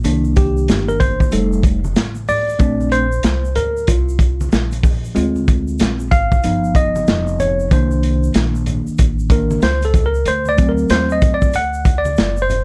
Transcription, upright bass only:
0.04 0.65 C2 loud
0.69 1.30 G1 medium
1.32 1.93 F1 medium
1.96 2.57 A1 medium
2.60 3.21 A#1 loud
3.24 3.55 C2 loud
3.56 3.86 D2 medium
3.88 4.49 C2 medium
4.53 5.13 A#1 medium
5.16 5.77 D2 loud
5.80 6.10 A#1 medium
6.12 6.42 G#1 medium
6.45 7.05 G1 medium
7.08 7.68 F1 medium
7.71 8.32 C2 loud
8.35 8.84 A#1 loud
8.87 muted upright bass stroke medium
8.99 9.60 A1 medium
9.63 10.23 C#2 medium
10.26 10.87 D2 loud
10.90 11.40 D#2 medium
11.42 muted upright bass stroke soft
11.54 12.15 D2 medium
12.18 12.64 F#1 medium

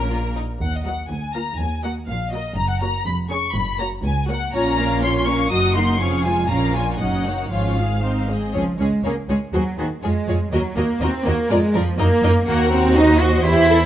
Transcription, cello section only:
0.00 0.34 A#2 soft
0.61 1.00 D#2 soft
1.11 1.50 D2 soft
1.60 1.99 D#2 soft
2.09 2.48 A#2 soft
2.58 2.96 F#2 medium
3.06 3.45 F2 medium
3.55 3.94 F#2 medium
4.04 4.43 C#2 medium
4.53 5.47 A#2 medium
5.51 5.99 F#2 medium
6.00 6.49 F2 medium
6.50 7.00 A#2 soft
7.00 7.51 F#2 soft
7.51 8.32 G#2 soft
8.54 8.77 F3 medium
8.79 9.04 G#3 medium
9.04 9.12 A#3 medium
9.29 9.37 G#3 medium
9.54 9.78 F#3 medium
9.78 9.86 D#3 medium
10.02 10.51 G#3 medium
10.52 10.76 F#3 medium
10.77 11.01 A#3 medium
11.01 11.26 C4 medium
11.26 11.50 A#3 medium
11.50 11.75 G#3 medium
11.75 11.99 F3 medium
11.99 12.46 A#3 loud
12.48 12.72 A#3 medium
12.72 12.96 C4 medium
12.97 13.21 D#4 loud
13.21 13.45 F#4 loud
13.45 13.86 E4 loud

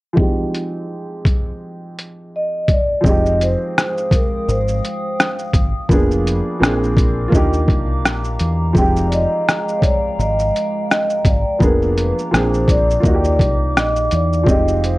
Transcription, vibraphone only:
2.36 2.71 D#5 medium
2.71 3.06 D5 medium
3.07 3.42 D#5 loud
3.42 4.15 C5 medium
4.14 4.49 A#4 medium
4.49 5.51 C5 medium
8.77 9.04 G5 loud
9.08 9.12 D5 medium
9.13 9.79 D#5 medium
9.79 9.84 C#5 medium
9.84 10.20 D5 medium
10.20 10.80 D#5 medium
10.86 10.91 F5 medium
10.91 11.27 D#5 medium
11.27 11.57 D5 medium
11.57 11.62 B4 medium
11.63 11.99 A#4 medium
11.98 12.14 B4 medium
12.34 12.70 C5 medium
12.70 13.72 D5 medium
13.78 14.10 D#5 medium
14.13 14.49 D5 medium
14.49 14.81 D#5 medium
14.84 14.98 C5 medium

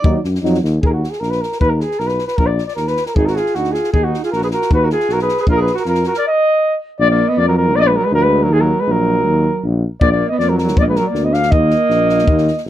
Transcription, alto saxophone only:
0.00 0.23 D5 loud
3.17 3.31 D#4 medium
3.29 3.40 F#4 medium
3.39 3.58 F4 medium
3.57 3.76 D#4 medium
3.74 3.92 F4 medium
3.93 4.05 D#4 medium
4.05 4.23 D#4 medium
4.24 4.32 F4 medium
4.35 4.43 F#4 medium
4.44 4.48 G#4 medium
4.54 4.70 F#4 medium
4.72 4.81 F#4 medium
4.81 4.90 F#4 medium
4.91 5.12 F4 medium
5.10 5.19 F#4 medium
5.22 5.38 G#4 medium
5.40 5.44 G#4 medium
5.49 5.56 F4 medium
5.57 5.74 G#4 medium
5.74 5.84 F#4 medium
5.85 6.03 F4 medium
6.06 6.14 F#4 medium
6.16 6.24 A#4 medium
7.01 7.09 A#3 medium
7.10 7.31 A#3 medium
7.29 7.41 B3 medium
7.40 7.47 A#3 medium
7.48 7.56 F#3 medium
7.58 7.79 F#3 medium
7.77 7.83 A#3 medium
7.81 7.84 B3 medium
7.89 7.99 G#3 medium
7.98 8.07 F#3 medium
8.06 8.14 G#3 medium
8.15 8.25 F3 medium
8.24 8.45 G#3 medium
8.43 8.53 F#3 medium
8.51 8.62 D#3 medium
8.61 8.82 F#3 medium
8.81 8.92 G#3 medium
8.90 9.65 F#3 medium
10.02 10.11 A#3 medium
10.12 10.29 A#3 medium
10.31 10.39 B3 medium
10.41 10.52 A#3 medium
10.51 10.59 F#3 medium
10.61 10.82 F#3 medium
10.80 10.83 A#3 medium
10.80 10.86 B3 medium
10.85 11.01 G#3 medium
10.85 10.89 A#3 medium
10.99 11.07 F#3 medium
11.08 11.26 A#3 medium
11.25 11.34 B3 medium
11.32 11.53 D4 medium
11.52 12.65 A#3 medium

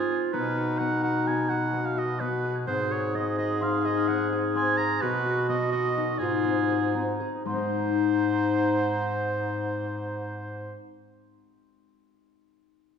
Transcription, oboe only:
0.00 0.19 G#4 medium
0.33 0.80 B4 medium
0.79 1.03 F#5 medium
1.03 1.29 F#5 loud
1.27 1.51 G#5 medium
1.49 1.87 F#5 loud
1.86 2.00 F5 medium
1.98 2.22 D#5 medium
2.20 2.56 B4 medium
2.67 2.94 C5 medium
2.92 3.17 C#5 medium
3.15 3.37 D#5 medium
3.38 3.65 D#5 medium
3.63 3.87 F5 medium
3.85 4.09 D#5 medium
4.08 4.32 F#5 medium
4.56 4.79 G#5 loud
4.78 5.03 A#5 loud
5.01 5.49 B4 loud
5.49 5.71 D#5 medium
5.72 6.20 D#5 loud
6.18 7.18 G#4 medium
7.46 10.79 C5 loud

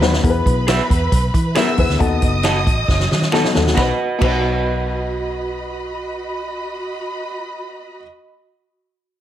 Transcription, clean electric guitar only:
0.67 0.80 G#4 medium
0.67 0.81 B4 medium
0.67 0.81 E5 loud
1.55 1.68 G#4 medium
1.55 1.69 B4 medium
1.55 1.69 E5 loud
2.43 2.57 F#4 medium
2.43 2.57 A4 medium
2.43 2.58 D#5 medium
3.32 3.45 F#4 medium
3.32 3.46 A4 medium
3.32 3.46 D#5 medium
3.75 4.18 F#4 medium
3.75 4.21 B4 medium
3.80 4.23 D#5 loud
4.19 7.99 F#4 medium
4.19 8.02 B4 medium
4.24 8.04 D#5 medium

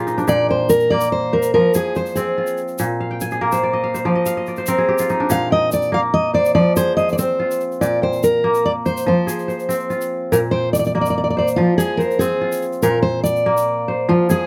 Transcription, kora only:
0.00 0.26 A#2 medium
0.00 1.48 F4 medium
0.00 1.27 G4 medium
0.00 0.55 G#4 medium
0.00 0.49 A#4 medium
0.00 0.31 C5 medium
0.07 1.69 D#4 medium
0.18 1.86 D4 medium
0.28 1.58 A#2 medium
0.49 1.42 G5 medium
0.92 2.85 A#3 medium
1.33 1.96 C5 medium
1.55 2.84 F3 medium
1.75 3.17 G#4 medium
1.96 3.15 C5 medium
2.17 3.97 C4 medium
2.38 3.89 F4 medium
2.80 4.10 A#2 medium
3.00 3.83 F5 medium
3.11 3.38 G5 medium
3.22 4.12 G#5 medium
3.32 4.68 G#4 medium
3.41 5.34 A#3 medium
3.41 4.68 A#4 medium
3.53 3.94 C5 medium
3.63 4.05 D5 medium
3.73 4.11 D#5 medium
3.84 4.26 F5 medium
3.94 4.58 C5 medium
4.05 5.35 F3 medium
4.05 4.43 D5 medium
4.15 4.37 D#5 medium
4.26 5.26 F5 medium
4.37 5.26 D#5 medium
4.48 5.16 D5 medium
4.58 5.77 C5 medium
4.68 6.48 C4 medium
4.68 5.95 A#4 medium
4.78 5.56 G#4 medium
4.88 6.30 G4 medium
5.00 6.51 F4 medium
5.10 6.72 D#4 medium
5.20 6.88 D4 medium
5.30 6.61 A#2 medium
5.50 6.44 G5 medium
5.92 7.85 A#3 medium
6.34 6.97 C5 medium
6.55 7.87 F3 medium
6.77 8.08 G#4 medium
6.97 8.16 C5 medium
7.19 8.99 C4 medium
7.40 8.91 F4 medium
7.81 9.12 A#2 medium
8.02 8.95 G5 medium
8.44 10.37 A#3 medium
8.85 9.48 C5 medium
9.06 10.38 F3 medium
9.27 10.58 G#4 medium
9.48 10.67 C5 medium
9.69 11.49 C4 medium
9.90 11.41 F4 medium
10.32 11.63 A#2 medium
10.52 11.46 G5 medium
10.95 12.88 A#3 medium
11.37 11.99 C5 medium
11.58 12.89 F3 medium
11.79 13.15 G#4 medium
11.99 13.18 C5 medium
12.21 14.01 C4 medium
12.41 13.93 F4 medium
12.83 14.14 A#2 medium
13.46 14.47 A#3 medium
13.88 14.47 C5 medium
14.09 14.47 F3 medium
14.29 14.47 G#4 medium

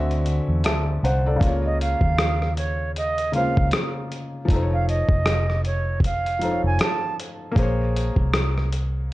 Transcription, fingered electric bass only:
0.00 0.39 D2 loud
0.49 0.64 E2 medium
0.64 0.98 D2 medium
1.03 1.36 C2 medium
1.41 1.94 C#2 medium
2.01 3.52 D#2 medium
3.57 3.70 C#2 medium
4.48 5.02 F1 medium
5.08 6.59 F1 medium
6.64 6.77 F1 medium
7.56 8.09 A#1 loud
8.17 9.13 C2 medium

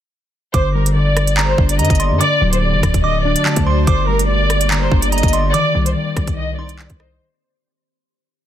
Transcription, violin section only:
0.54 0.72 C5 loud
0.75 0.93 A#4 medium
0.96 1.45 D5 medium
1.48 1.66 C5 medium
1.70 1.78 D5 medium
1.79 1.97 D#5 medium
2.21 2.51 D5 loud
2.53 2.61 C5 medium
2.62 3.01 D5 medium
3.04 3.22 D#5 medium
3.25 3.64 D5 medium
3.66 3.84 C5 medium
3.87 4.05 C5 loud
4.08 4.26 A#4 medium
4.29 4.79 D5 medium
4.82 4.99 C5 medium
5.03 5.11 D5 medium
5.12 5.30 D#5 medium
5.53 5.84 D5 loud
5.86 5.94 C5 medium
5.95 6.35 D5 medium
6.37 6.55 D#5 loud
6.58 6.97 D5 medium
7.00 7.17 C5 medium

